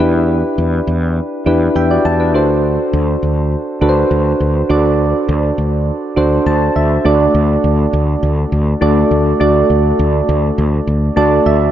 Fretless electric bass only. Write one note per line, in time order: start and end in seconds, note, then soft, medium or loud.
0.00 0.42 E2 loud
0.58 0.79 E2 medium
0.87 1.19 E2 loud
1.46 1.67 E2 medium
1.75 1.97 E2 medium
2.05 2.34 E2 medium
2.34 2.77 D2 loud
2.93 3.14 D2 loud
3.23 3.54 D2 medium
3.81 4.03 D2 loud
4.11 4.32 D2 loud
4.40 4.61 D2 medium
4.70 5.12 D2 loud
5.29 5.50 D2 loud
5.58 5.90 D2 medium
6.17 6.38 D2 medium
6.46 6.67 D2 loud
6.76 6.97 D2 medium
7.05 7.26 D2 loud
7.34 7.56 D2 loud
7.64 7.85 D2 loud
7.93 8.14 D2 loud
8.23 8.44 D2 loud
8.52 8.73 D2 medium
8.82 9.03 D2 loud
9.11 9.32 D2 medium
9.40 9.62 D2 loud
9.70 9.91 D2 medium
9.99 10.20 D2 loud
10.29 10.50 D2 loud
10.58 10.79 D2 loud
10.87 11.09 D2 loud
11.17 11.38 D2 loud
11.46 11.67 D2 loud